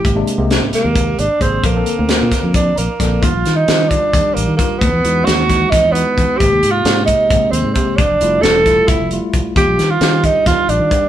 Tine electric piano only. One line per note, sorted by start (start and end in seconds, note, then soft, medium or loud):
0.05 0.14 C3 medium
0.05 0.15 G#3 medium
0.05 0.14 A#3 medium
0.05 0.16 G4 medium
0.15 0.36 C3 medium
0.15 0.36 G#3 medium
0.15 0.37 A#3 medium
0.15 0.37 D4 loud
0.37 1.23 C3 medium
0.37 1.23 G#3 medium
0.37 1.23 A#3 medium
0.37 1.24 G4 medium
1.40 1.62 C3 medium
1.40 1.62 G#3 medium
1.40 1.62 A#3 medium
1.40 1.62 G#4 medium
1.63 1.74 D3 medium
1.63 1.74 A#3 medium
1.63 1.75 C4 medium
1.63 1.75 A4 medium
1.75 1.96 D3 medium
1.75 1.97 A#3 medium
1.75 1.97 C4 medium
1.75 1.97 A4 medium
1.98 2.83 D3 medium
1.98 2.83 A#3 medium
1.98 2.83 C4 medium
1.98 2.83 A#4 medium
2.76 2.98 A#5 medium
3.00 3.21 D3 medium
3.00 3.21 A#3 medium
3.00 3.22 C4 medium
3.00 3.22 A4 medium
3.00 3.21 D5 medium
3.21 3.65 D#3 medium
3.21 3.65 G3 medium
3.21 3.65 D4 medium
3.21 3.65 F4 medium
3.67 4.10 D#3 medium
3.67 4.10 G3 medium
3.67 4.11 D4 medium
3.67 4.11 F4 medium
4.13 4.56 D#3 medium
4.13 4.56 G3 medium
4.13 4.56 D4 medium
4.13 4.56 G4 medium
4.59 4.82 D#3 medium
4.59 4.82 G3 medium
4.59 4.82 D4 medium
4.59 4.82 F4 medium
5.04 5.47 E3 medium
5.04 5.47 G#3 medium
5.04 5.47 D#4 medium
5.04 5.47 F#4 medium
5.49 5.92 E3 medium
5.49 5.92 G#3 medium
5.49 5.92 D#4 medium
5.49 5.92 F#4 medium
5.94 6.37 E3 medium
5.94 6.37 G#3 medium
5.94 6.37 D#4 medium
5.94 6.37 F#4 medium
6.39 6.82 C3 medium
6.39 6.82 G#3 medium
6.39 6.82 A#3 medium
6.39 6.82 G4 medium
6.85 7.28 C3 medium
6.85 7.28 G#3 medium
6.85 7.28 A#3 medium
6.85 7.28 G4 medium
7.29 7.72 C3 medium
7.29 7.72 G#3 medium
7.29 7.73 A#3 medium
7.29 7.73 C4 medium
7.76 7.98 C3 medium
7.76 7.98 G#3 medium
7.76 7.99 A#3 medium
7.76 7.99 G4 medium
8.21 8.64 G3 medium
8.21 8.64 A3 medium
8.21 8.63 E4 medium
8.21 8.64 F4 medium
8.66 9.09 G3 medium
8.66 9.09 A3 medium
8.66 9.08 E4 medium
8.66 9.09 F4 medium
9.12 9.54 G3 medium
9.12 9.54 A3 medium
9.12 9.54 E4 medium
9.12 9.54 F4 medium
9.55 9.98 D#3 medium
9.55 9.98 G3 medium
9.55 9.99 D4 medium
9.55 9.99 F4 medium
10.01 10.44 D#3 medium
10.01 10.43 G3 medium
10.01 10.44 D4 medium
10.01 10.44 G4 medium
10.46 10.88 D#3 medium
10.46 10.89 G3 medium
10.46 10.89 D4 medium
10.46 10.89 F4 loud
10.91 11.09 D#3 medium
10.91 11.09 G3 medium
10.91 11.09 D4 medium
10.91 11.09 G4 medium